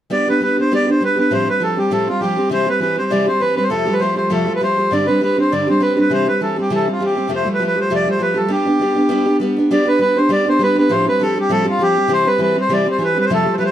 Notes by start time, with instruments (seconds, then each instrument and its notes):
0.10 steel-string acoustic guitar G3 B3 D4 G4, accordion D5
0.27 steel-string acoustic guitar B3 D4 G4, accordion B4
0.40 steel-string acoustic guitar G3 B3 D4 G4, accordion B4
0.57 steel-string acoustic guitar B3 D4 G4, accordion C5
0.71 steel-string acoustic guitar G3 B3 D4 G4, accordion D5
0.87 steel-string acoustic guitar B3 D4 G4, accordion C5
1.01 steel-string acoustic guitar G3 B3 D4 G4, accordion B4
1.16 steel-string acoustic guitar B3 D4 G4, accordion B4
1.31 steel-string acoustic guitar A2 F3 G3 C4 G4, accordion C5
1.47 steel-string acoustic guitar G3 C4 G4, accordion B4
1.60 steel-string acoustic guitar F3 G3 C4 G4, accordion A4
1.75 steel-string acoustic guitar G3 C4 G4, accordion G4
1.90 steel-string acoustic guitar A2 F3 G3 C4 G4, accordion A4
2.08 steel-string acoustic guitar G3 C4 G4, accordion F4
2.21 steel-string acoustic guitar F3 G3 C4 G4, accordion G4
2.36 steel-string acoustic guitar G3 C4 G4
2.49 steel-string acoustic guitar C3 E3 G3 C4 G4, accordion C5
2.67 steel-string acoustic guitar G3 C4 G4, accordion B4
2.80 steel-string acoustic guitar E3 G3 C4 G4, accordion B4
2.97 steel-string acoustic guitar G3 C4 G4, accordion C5
3.10 steel-string acoustic guitar C3 E3 G3 C4 G4, accordion D5
3.26 steel-string acoustic guitar G3 C4 G4, accordion C5
3.40 steel-string acoustic guitar E3 G3 C4 G4, accordion B4
3.56 steel-string acoustic guitar G3 C4 G4, accordion B4
3.63 accordion C5
3.70 steel-string acoustic guitar F2 C3 F3 G3 A3 G4, accordion A4
3.86 steel-string acoustic guitar F3 G3 A3 G4
3.93 accordion B4
3.99 steel-string acoustic guitar F3 G3 A3 G4, accordion C5
4.15 steel-string acoustic guitar F3 G3 A3 G4, accordion C5
4.30 steel-string acoustic guitar F2 C3 F3 G3 A3 G4, accordion A4
4.45 steel-string acoustic guitar F3 G3 A3 G4
4.55 accordion B4
4.61 steel-string acoustic guitar F3 G3 A3 G4, accordion C5
4.78 steel-string acoustic guitar F3 G3 A3 G4
4.91 steel-string acoustic guitar G2 D3 G3 C4 D4 G4, accordion D5
5.06 steel-string acoustic guitar G3 C4 D4 G4, accordion B4
5.21 steel-string acoustic guitar G3 C4 D4 G4, accordion B4
5.37 steel-string acoustic guitar G3 C4 D4 G4, accordion C5
5.52 steel-string acoustic guitar G2 D3 G3 C4 D4 G4, accordion D5
5.67 steel-string acoustic guitar G3 C4 D4 G4, accordion C5
5.80 steel-string acoustic guitar G3 C4 D4 G4, accordion B4
5.96 steel-string acoustic guitar G3 C4 D4 G4
6.00 accordion B4
6.10 steel-string acoustic guitar C3 E3 G3 C4 G4, accordion C5
6.26 steel-string acoustic guitar G3 C4 G4, accordion B4
6.41 steel-string acoustic guitar E3 G3 C4 G4, accordion A4
6.56 steel-string acoustic guitar G3 C4 G4
6.61 accordion G4
6.70 steel-string acoustic guitar C3 E3 G3 C4 G4
6.75 accordion A4
6.85 steel-string acoustic guitar G3 C4 G4
6.92 accordion F4
6.99 steel-string acoustic guitar E3 G3 C4 G4
7.05 accordion G4
7.15 steel-string acoustic guitar G3 C4 G4
7.28 steel-string acoustic guitar F2 C3 F3 G3 A3 G4
7.35 accordion C5
7.44 steel-string acoustic guitar F3 G3 A3 G4
7.54 accordion B4
7.59 steel-string acoustic guitar F3 G3 A3 G4
7.67 accordion B4
7.76 steel-string acoustic guitar F3 G3 A3 G4
7.81 accordion C5
7.90 steel-string acoustic guitar F2 C3 F3 G3 A3 G4
7.95 accordion D5
8.06 steel-string acoustic guitar F3 G3 A3 G4
8.11 accordion C5
8.19 steel-string acoustic guitar F3 G3 A3 G4, accordion B4
8.34 steel-string acoustic guitar F3 G3 A3 G4, accordion A4
8.48 steel-string acoustic guitar G3 B3 D4 G4, accordion G4
8.65 steel-string acoustic guitar B3 D4 G4
8.79 steel-string acoustic guitar G3 B3 D4 G4
8.95 steel-string acoustic guitar B3 D4 G4
9.09 steel-string acoustic guitar G3 B3 D4 G4
9.25 steel-string acoustic guitar B3 D4 G4
9.40 steel-string acoustic guitar G3 B3 D4 G4
9.57 steel-string acoustic guitar B3 D4 G4
9.71 steel-string acoustic guitar G3 B3 D4 G4, accordion D5
9.85 steel-string acoustic guitar B3 D4 G4, accordion B4
9.99 steel-string acoustic guitar G3 B3 D4 G4, accordion B4
10.16 steel-string acoustic guitar B3 D4 G4, accordion C5
10.29 steel-string acoustic guitar G3 B3 D4 G4, accordion D5
10.46 steel-string acoustic guitar B3 D4 G4, accordion C5
10.59 steel-string acoustic guitar G3 B3 D4 G4
10.63 accordion B4
10.75 steel-string acoustic guitar B3 D4 G4, accordion B4
10.89 steel-string acoustic guitar A2 F3 G3 C4 G4, accordion C5
11.06 steel-string acoustic guitar G3 C4 G4, accordion B4
11.20 steel-string acoustic guitar F3 G3 C4 G4, accordion A4
11.36 steel-string acoustic guitar G3 C4 G4
11.40 accordion G4
11.49 steel-string acoustic guitar A2 F3 G3 C4 G4, accordion A4
11.64 steel-string acoustic guitar G3 C4 G4
11.70 accordion F4
11.79 steel-string acoustic guitar F3 G3 C4 G4, accordion G4
11.95 steel-string acoustic guitar G3 C4 G4
12.08 steel-string acoustic guitar C3 E3 G3 C4 G4
12.13 accordion C5
12.25 steel-string acoustic guitar G3 C4 G4, accordion B4
12.38 steel-string acoustic guitar E3 G3 C4 G4, accordion B4
12.55 steel-string acoustic guitar G3 C4 G4
12.61 accordion C5
12.68 steel-string acoustic guitar C3 E3 G3 C4 G4
12.73 accordion D5
12.85 steel-string acoustic guitar G3 C4 G4
12.91 accordion C5
12.98 steel-string acoustic guitar E3 G3 C4 G4
13.04 accordion B4
13.15 steel-string acoustic guitar G3 C4 G4
13.20 accordion B4
13.25 accordion C5
13.30 steel-string acoustic guitar F2 C3 F3 G3 A3 G4
13.34 accordion A4
13.45 steel-string acoustic guitar F3 G3 A3 G4
13.54 accordion C5
13.58 steel-string acoustic guitar F3 G3 A3 G4, accordion B4
13.65 accordion C5